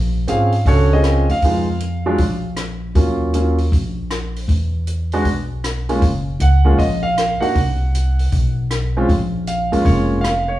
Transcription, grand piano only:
0.28 0.50 C4 soft
0.28 0.51 C#4 soft
0.28 0.51 F4 soft
0.28 0.51 G#4 medium
0.28 0.68 F5 medium
0.67 0.89 C#4 soft
0.67 0.89 D4 soft
0.67 0.89 F#4 soft
0.67 0.89 A4 medium
0.67 0.93 C#5 medium
0.93 1.26 C4 soft
0.93 1.26 C#4 soft
0.93 1.26 F4 soft
0.93 1.26 G#4 medium
0.93 1.31 D#5 medium
1.31 2.41 F5 medium
1.44 1.66 G#3 soft
1.44 1.66 B3 soft
1.44 1.66 D#4 soft
1.44 1.67 F4 soft
2.06 2.18 F#3 medium
2.06 2.18 G#3 medium
2.06 2.18 D4 medium
2.06 2.18 F4 medium
2.95 3.33 F#3 soft
2.95 3.33 A#3 soft
2.95 3.33 C#4 soft
2.95 3.33 F4 soft
3.34 3.57 F#3 soft
3.34 3.57 A#3 soft
3.34 3.57 C#4 soft
3.34 3.57 F4 soft
5.13 5.25 G#3 medium
5.13 5.25 B3 medium
5.13 5.25 D4 medium
5.13 5.25 F#4 medium
5.89 6.01 G#3 medium
5.89 6.01 A#3 medium
5.89 6.01 C#4 medium
5.89 6.02 F4 medium
6.41 6.77 F#5 medium
6.65 6.77 G#3 medium
6.65 6.78 A#3 soft
6.65 6.78 C#4 medium
6.65 6.78 F4 medium
6.78 7.02 D#5 medium
7.03 7.39 F5 medium
7.40 7.54 A#3 medium
7.40 7.54 D4 soft
7.40 7.54 D#4 soft
7.40 7.54 F#4 medium
7.40 8.52 F#5 medium
8.97 9.08 G#3 medium
8.97 9.08 C4 medium
8.97 9.08 C#4 medium
8.97 9.09 F4 medium
9.48 9.87 F5 medium
9.72 10.21 G#3 medium
9.72 10.21 A#3 medium
9.72 10.21 C#4 medium
9.72 10.21 F4 medium
9.85 10.25 C#5 medium
10.21 10.48 F5 medium
10.48 10.60 C#5 medium

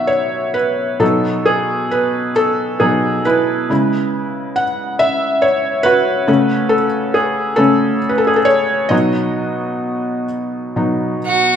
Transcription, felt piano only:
0.00 0.97 B2 medium
0.00 0.97 D#3 medium
0.00 0.97 F#3 soft
0.00 1.03 D#5 medium
0.00 1.03 E5 medium
0.00 1.03 F#5 medium
0.07 0.55 C#5 medium
0.54 1.02 B4 medium
1.00 2.32 B2 soft
1.00 2.32 F#3 soft
1.00 2.33 D#4 medium
1.00 1.43 A4 medium
1.46 1.88 G#4 medium
1.91 2.37 B4 medium
2.36 2.77 A4 medium
2.80 3.21 B2 soft
2.80 3.22 F#3 soft
2.80 3.22 D#4 soft
2.80 3.26 G#4 medium
3.25 3.69 E4 medium
3.25 4.62 B4 medium
3.70 6.24 C#3 medium
3.70 6.25 G#3 soft
3.70 6.25 E4 medium
4.56 5.01 F#5 medium
4.99 5.44 E5 medium
5.42 5.86 C#5 medium
5.83 7.11 F#4 medium
5.83 6.73 B4 loud
6.27 6.85 C#3 medium
6.27 6.86 A3 soft
6.27 6.86 C#4 medium
6.69 7.15 A4 medium
7.14 7.60 G#4 medium
7.56 7.98 C#3 soft
7.56 7.99 A3 soft
7.56 7.99 C#4 medium
7.56 8.12 A4 medium
8.09 8.20 B4 medium
8.18 8.28 A4 medium
8.27 8.37 G#4 medium
8.36 8.46 A4 medium
8.45 8.92 C#5 medium
8.89 10.24 B2 medium
8.89 10.25 F#3 soft
8.89 10.25 D#4 medium
8.89 11.19 F#4 medium
8.89 11.17 D#5 medium
10.76 11.19 B2 soft
10.76 11.19 F#3 soft
10.76 11.20 D#4 soft

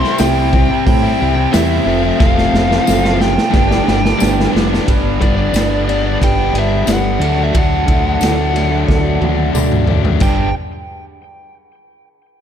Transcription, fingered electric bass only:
0.20 0.69 C2 loud
0.87 1.11 A2 loud
1.22 1.46 C2 medium
1.54 1.78 E2 medium
1.85 2.10 F1 medium
2.21 2.45 F1 medium
2.53 2.78 F1 loud
2.88 3.36 F#1 medium
3.54 3.78 G1 loud
3.88 4.12 G1 medium
4.22 4.46 G1 medium
4.54 4.79 F1 medium
4.88 5.18 G1 medium
5.21 5.52 G1 medium
5.53 6.17 G1 medium
6.22 6.52 G1 medium
6.53 6.84 G1 medium
6.87 7.18 G1 medium
7.19 7.51 D2 medium
7.55 7.85 D2 medium
7.88 8.19 D2 loud
8.21 8.84 D2 medium
8.88 9.19 D2 medium
9.21 9.52 D2 medium
9.54 10.17 D2 medium
10.21 10.52 G1 medium

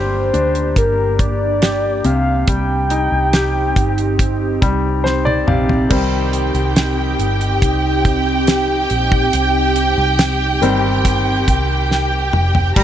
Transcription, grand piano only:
0.00 2.01 G3 medium
0.00 0.32 D4 soft
0.00 1.58 G4 soft
0.33 2.01 D4 medium
1.62 2.04 G4 soft
2.04 5.44 C3 medium
2.48 4.15 G3 medium
2.90 4.58 D#4 soft
3.33 5.01 G4 medium
4.62 5.87 G3 medium
5.04 5.24 C5 medium
5.25 5.46 D5 medium
5.47 5.89 C3 medium
5.47 5.88 F5 medium
5.90 7.15 D#3 soft
5.90 7.15 G3 soft
5.90 7.15 C4 soft
10.62 11.19 D#3 medium
10.62 11.19 G3 medium
10.62 11.20 C4 medium
12.76 12.84 G3 medium

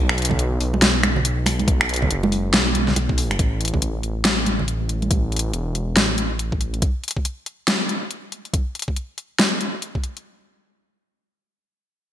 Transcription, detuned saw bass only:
0.00 0.59 B1 loud
0.61 1.24 B1 loud
1.25 2.09 B1 medium
2.11 2.52 F#1 loud
2.54 2.95 B1 loud
2.96 3.38 B1 loud
3.39 4.02 A1 medium
4.04 4.66 A1 medium
4.68 5.52 A1 medium
5.53 5.95 E1 medium
5.96 6.81 A1 medium

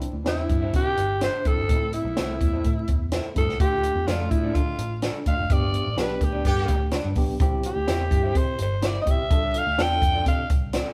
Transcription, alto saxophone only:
0.28 0.71 E4 medium
0.76 1.19 G4 loud
1.24 1.48 C5 loud
1.47 1.93 A4 loud
1.94 3.09 E4 medium
3.38 3.59 A4 loud
3.61 4.09 G4 loud
4.07 4.32 F4 medium
4.30 4.56 E4 medium
4.54 5.02 F4 medium
5.27 5.54 F5 loud
5.53 5.99 D5 loud
5.99 6.25 B4 medium
6.24 6.46 G4 medium
6.47 6.90 G4 medium
7.66 8.39 G4 medium
8.37 8.60 C5 loud
8.62 8.87 C5 medium
8.86 9.01 D5 medium
9.01 9.12 D#5 medium
9.10 9.59 E5 loud
9.58 9.83 F5 loud
9.82 10.27 G5 loud
10.28 10.49 F5 medium

